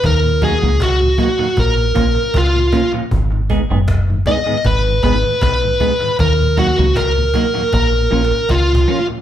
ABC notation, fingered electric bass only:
X:1
M:4/4
L:1/16
Q:1/4=78
K:G#dor
V:1 name="Fingered electric bass" clef=bass
D,,3 C,,3 z2 A,,,2 A,,, z C,,2 z2 | G,,,3 F,,,3 z2 G,,,2 G,,, z B,,,2 z2 | D,,3 C,,3 z2 A,,,2 A,,, z C,,2 z2 |]